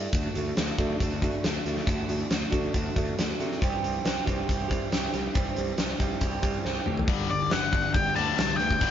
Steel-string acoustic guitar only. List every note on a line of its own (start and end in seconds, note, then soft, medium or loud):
0.00 0.11 D3 medium
0.00 0.13 A3 soft
0.00 0.13 D4 medium
0.00 0.11 E4 medium
0.12 0.55 D3 medium
0.12 0.36 A3 medium
0.12 0.35 D4 medium
0.12 0.33 F#4 medium
0.34 0.57 A3 soft
0.34 0.57 D4 medium
0.34 0.58 F#4 medium
0.55 0.79 D3 medium
0.55 0.78 A3 medium
0.55 0.78 D4 medium
0.55 0.77 F#4 medium
0.77 0.98 D3 medium
0.77 1.00 A3 medium
0.77 1.01 D4 medium
0.77 1.01 F#4 medium
0.99 1.23 D3 medium
0.99 1.23 A3 medium
0.99 1.22 D4 medium
0.99 1.21 F#4 medium
1.22 1.42 D3 medium
1.22 1.43 A3 medium
1.22 1.44 D4 medium
1.22 1.44 F#4 medium
1.43 1.85 D3 medium
1.43 1.67 A3 medium
1.43 1.66 D4 medium
1.43 1.64 F#4 medium
1.65 1.86 A3 soft
1.65 1.87 D4 medium
1.65 1.88 F#4 medium
1.86 2.29 D3 medium
1.86 2.10 A3 medium
1.86 2.09 D4 medium
1.86 2.07 F#4 medium
2.08 2.30 A3 soft
2.08 2.30 D4 medium
2.08 2.31 F#4 medium
2.30 2.52 D3 medium
2.30 2.51 A3 medium
2.30 2.50 D4 medium
2.30 2.49 F#4 medium
2.50 2.71 D3 medium
2.50 2.72 A3 medium
2.50 2.73 D4 medium
2.50 2.74 F#4 medium
2.73 2.96 D3 medium
2.73 2.95 A3 medium
2.73 2.94 D4 medium
2.73 2.93 F#4 medium
2.94 3.15 D3 medium
2.94 3.16 A3 medium
2.94 3.17 D4 medium
2.94 3.18 F#4 medium
3.16 3.59 D3 medium
3.16 3.39 A3 medium
3.16 3.38 D4 medium
3.16 3.37 F#4 medium
3.38 3.60 A3 soft
3.38 3.60 D4 medium
3.38 3.59 F#4 medium
3.61 4.27 C3 medium
3.61 4.04 E3 medium
3.61 3.85 G3 medium
3.61 3.84 C4 medium
3.61 3.82 G4 medium
3.82 4.05 G3 soft
3.82 4.05 C4 medium
3.82 4.06 G4 medium
4.04 4.27 E3 medium
4.04 4.26 G3 medium
4.04 4.26 C4 medium
4.04 4.25 G4 medium
4.26 4.70 C3 medium
4.26 4.45 E3 medium
4.26 4.48 G3 medium
4.26 4.48 C4 medium
4.26 4.49 G4 medium
4.47 4.69 E3 medium
4.47 4.70 G3 medium
4.47 4.68 C4 medium
4.47 4.68 G4 medium
4.68 5.14 C3 medium
4.68 4.89 E3 medium
4.68 4.91 G3 medium
4.68 4.90 C4 medium
4.68 4.92 G4 medium
4.90 5.33 E3 medium
4.90 5.14 G3 medium
4.90 5.13 C4 medium
4.90 5.12 G4 medium
5.12 5.34 G3 soft
5.12 5.35 C4 medium
5.12 5.35 G4 medium
5.34 5.78 C3 medium
5.34 5.76 E3 medium
5.34 5.58 G3 medium
5.34 5.56 C4 medium
5.34 5.55 G4 medium
5.56 5.78 G3 soft
5.56 5.78 C4 medium
5.56 5.79 G4 medium
5.77 6.01 E3 medium
5.77 6.00 G3 medium
5.77 5.99 C4 medium
5.77 5.98 G4 medium
5.99 6.44 C3 medium
5.99 6.21 E3 medium
5.99 6.22 G3 medium
5.99 6.22 C4 medium
5.99 6.24 G4 medium
6.22 6.44 E3 medium
6.22 6.43 G3 medium
6.22 6.42 C4 medium
6.22 6.41 G4 medium
6.43 6.88 C3 medium
6.43 6.63 E3 medium
6.43 6.65 G3 medium
6.43 6.65 C4 medium
6.43 6.66 G4 medium
6.64 7.07 E3 medium
6.64 6.88 G3 medium
6.64 6.87 C4 medium
6.64 6.85 G4 medium
6.86 7.09 G3 soft
6.86 7.08 C4 medium
6.86 7.07 G4 medium
7.08 8.17 G2 medium
7.29 8.37 G3 medium
7.51 8.17 B3 medium
7.74 8.91 D4 medium
7.96 8.91 G4 medium
8.18 8.59 B3 medium
8.38 8.91 G3 medium
8.61 8.91 B3 medium
8.82 8.91 G2 medium